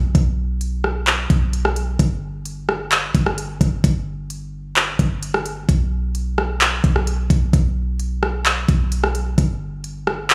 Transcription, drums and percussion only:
0.15 kick, closed hi-hat
0.61 closed hi-hat
0.84 cross-stick
1.07 clap, closed hi-hat
1.30 kick, closed hi-hat
1.53 closed hi-hat
1.65 cross-stick
1.76 closed hi-hat
1.99 kick, closed hi-hat
2.45 closed hi-hat
2.69 cross-stick
2.92 clap, closed hi-hat
3.15 kick, closed hi-hat
3.26 cross-stick
3.38 closed hi-hat
3.61 kick, closed hi-hat
3.84 kick, closed hi-hat
4.30 closed hi-hat
4.76 clap, closed hi-hat
4.99 kick, closed hi-hat
5.23 closed hi-hat
5.34 cross-stick
5.46 closed hi-hat
5.69 kick, closed hi-hat
6.15 closed hi-hat
6.38 cross-stick
6.61 clap, closed hi-hat
6.84 kick, closed hi-hat
6.96 cross-stick
7.07 closed hi-hat
7.30 kick, closed hi-hat
7.53 kick, closed hi-hat
8.00 closed hi-hat
8.23 cross-stick
8.46 clap, closed hi-hat
8.69 kick, closed hi-hat
8.92 closed hi-hat
9.04 cross-stick
9.15 closed hi-hat
9.38 kick, closed hi-hat
9.84 closed hi-hat
10.07 cross-stick
10.30 clap, closed hi-hat

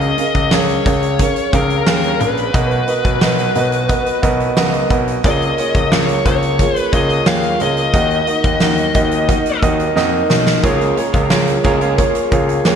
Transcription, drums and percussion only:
0.01 closed hi-hat
0.18 closed hi-hat
0.35 kick, closed hi-hat
0.51 snare
0.69 closed hi-hat
0.85 kick, closed hi-hat
1.02 closed hi-hat
1.19 kick, closed hi-hat
1.36 closed hi-hat
1.53 kick, closed hi-hat
1.70 closed hi-hat
1.87 snare
2.04 closed hi-hat
2.20 closed hi-hat
2.37 closed hi-hat
2.54 kick, closed hi-hat
2.71 closed hi-hat
2.88 closed hi-hat
3.05 kick, closed hi-hat
3.21 snare
3.39 closed hi-hat
3.55 closed hi-hat
3.72 closed hi-hat
3.89 kick, closed hi-hat
4.06 closed hi-hat
4.23 kick, closed hi-hat
4.40 closed hi-hat
4.57 snare
4.74 closed hi-hat
4.90 kick, closed hi-hat
5.08 closed hi-hat
5.24 kick, closed hi-hat
5.42 closed hi-hat
5.58 closed hi-hat
5.75 kick, closed hi-hat
5.92 snare
6.09 closed hi-hat
6.25 kick, closed hi-hat
6.42 closed hi-hat
6.59 kick, closed hi-hat
6.76 closed hi-hat
6.93 kick, closed hi-hat
7.10 closed hi-hat
7.26 snare
7.43 closed hi-hat
7.60 closed hi-hat
7.77 closed hi-hat
7.93 kick, closed hi-hat
8.10 closed hi-hat
8.27 closed hi-hat
8.44 kick, closed hi-hat
8.60 snare
8.78 closed hi-hat
8.94 kick, closed hi-hat
9.11 closed hi-hat
9.28 kick, closed hi-hat
9.46 closed hi-hat
9.62 kick, closed hi-hat
9.79 closed hi-hat
9.96 snare
10.30 snare
10.47 snare
10.64 kick, closed hi-hat
10.81 closed hi-hat
10.97 closed hi-hat
11.14 kick, closed hi-hat
11.30 snare
11.47 closed hi-hat
11.64 kick, closed hi-hat
11.81 closed hi-hat
11.98 kick, closed hi-hat
12.15 closed hi-hat
12.32 kick, closed hi-hat
12.49 closed hi-hat
12.65 snare

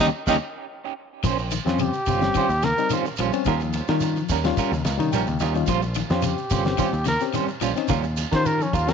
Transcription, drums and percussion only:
0.00 snare
0.27 kick, snare, shekere
1.24 kick, crash, shekere
1.38 shekere
1.51 ride bell, shekere
1.67 snare, shekere
1.79 ride bell, shekere
1.93 shekere
2.06 kick, open hi-hat, shekere
2.22 snare, shekere
2.35 kick, ride bell, shekere
2.50 shekere
2.62 snare, ride bell, shekere
2.78 shekere
2.90 ride bell, shekere
3.05 shekere
3.17 ride bell, shekere
3.33 ride bell, shekere
3.45 kick, ride bell, shekere
3.60 shekere
3.73 snare, ride bell, shekere
3.88 snare, ride bell, shekere
4.00 ride bell, shekere
4.16 shekere
4.29 kick, open hi-hat, shekere
4.45 snare, ride bell, shekere
4.57 kick, ride bell, shekere
4.73 shekere
4.85 snare, ride bell, shekere
5.00 ride bell, shekere
5.13 ride bell, shekere
5.27 shekere
5.40 snare, ride bell, shekere
5.54 shekere
5.67 kick, ride bell, shekere
5.82 shekere
5.94 snare, ride bell, shekere
6.10 snare, shekere
6.22 snare, ride bell, shekere
6.38 shekere
6.50 kick, open hi-hat, shekere
6.65 snare, shekere
6.78 kick, ride bell, shekere
6.93 shekere
7.05 snare, ride bell, shekere
7.20 snare, shekere
7.33 ride bell, shekere
7.48 shekere
7.61 ride bell, shekere
7.76 snare, ride bell, shekere
7.88 kick, ride bell, shekere
8.04 shekere
8.17 snare, ride bell, shekere
8.32 kick, snare, ride bell, shekere
8.46 ride bell, shekere
8.61 shekere
8.73 kick, ride bell, shekere
8.88 snare, ride bell, shekere

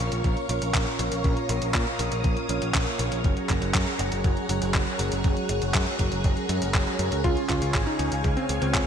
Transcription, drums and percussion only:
0.12 closed hi-hat
0.24 kick, closed hi-hat
0.37 closed hi-hat
0.49 closed hi-hat
0.62 closed hi-hat
0.74 kick, clap, closed hi-hat
0.87 closed hi-hat
0.99 closed hi-hat
1.12 closed hi-hat
1.24 kick, closed hi-hat
1.37 closed hi-hat
1.49 closed hi-hat
1.62 closed hi-hat
1.74 kick, clap, closed hi-hat
1.87 closed hi-hat
1.99 closed hi-hat
2.12 closed hi-hat
2.24 kick, closed hi-hat
2.37 closed hi-hat
2.49 closed hi-hat
2.62 closed hi-hat
2.74 kick, clap, closed hi-hat
2.87 closed hi-hat
2.99 closed hi-hat
3.12 closed hi-hat
3.24 kick, closed hi-hat
3.37 closed hi-hat
3.49 kick, clap, closed hi-hat
3.62 closed hi-hat
3.74 kick, clap, closed hi-hat
3.87 closed hi-hat
3.99 closed hi-hat
4.12 closed hi-hat
4.24 kick, closed hi-hat
4.37 closed hi-hat
4.49 closed hi-hat
4.62 closed hi-hat
4.74 kick, clap, closed hi-hat
4.87 closed hi-hat
4.99 closed hi-hat
5.12 closed hi-hat
5.24 kick, closed hi-hat
5.37 closed hi-hat
5.49 closed hi-hat
5.62 closed hi-hat
5.74 kick, clap, closed hi-hat
5.87 closed hi-hat
5.99 kick, closed hi-hat
6.12 closed hi-hat
6.24 kick, closed hi-hat
6.37 closed hi-hat
6.49 closed hi-hat
6.62 closed hi-hat
6.74 kick, clap, closed hi-hat
6.87 closed hi-hat
6.99 closed hi-hat
7.12 closed hi-hat
7.24 kick, closed hi-hat
7.37 closed hi-hat
7.49 kick, clap, closed hi-hat
7.62 closed hi-hat
7.74 kick, clap, closed hi-hat
7.87 closed hi-hat
7.99 closed hi-hat
8.12 closed hi-hat
8.24 kick, closed hi-hat
8.37 closed hi-hat
8.49 closed hi-hat
8.62 closed hi-hat
8.74 kick, clap, closed hi-hat

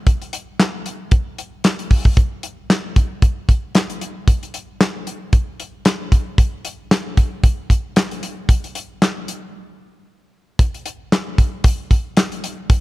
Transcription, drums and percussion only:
0.07 kick, closed hi-hat
0.22 closed hi-hat
0.33 closed hi-hat
0.60 snare, clap, closed hi-hat
0.86 closed hi-hat
1.11 kick, closed hi-hat
1.38 closed hi-hat
1.64 snare, clap, closed hi-hat
1.79 closed hi-hat
1.91 kick, open hi-hat
2.05 kick
2.17 kick, closed hi-hat
2.43 closed hi-hat
2.70 snare, clap, closed hi-hat
2.96 kick, closed hi-hat
3.22 kick, closed hi-hat
3.49 kick, closed hi-hat
3.75 snare, clap, closed hi-hat
3.90 closed hi-hat
4.01 closed hi-hat
4.28 kick, closed hi-hat
4.43 closed hi-hat
4.54 closed hi-hat
4.81 snare, clap, closed hi-hat
5.07 closed hi-hat
5.33 kick, closed hi-hat
5.60 closed hi-hat
5.85 snare, clap, closed hi-hat
6.12 kick, closed hi-hat
6.38 kick, closed hi-hat
6.65 closed hi-hat
6.91 snare, clap, closed hi-hat
7.17 kick, closed hi-hat
7.44 kick, closed hi-hat
7.70 kick, closed hi-hat
7.96 snare, clap, closed hi-hat
8.11 closed hi-hat
8.23 closed hi-hat
8.49 kick, closed hi-hat
8.64 closed hi-hat
8.75 closed hi-hat
9.02 snare, clap, closed hi-hat
9.28 closed hi-hat
10.59 kick, closed hi-hat
10.74 closed hi-hat
10.86 closed hi-hat
11.12 snare, clap, closed hi-hat
11.38 kick, closed hi-hat
11.64 kick, closed hi-hat
11.91 kick, closed hi-hat
12.17 snare, clap, closed hi-hat
12.32 closed hi-hat
12.44 closed hi-hat
12.70 kick, closed hi-hat

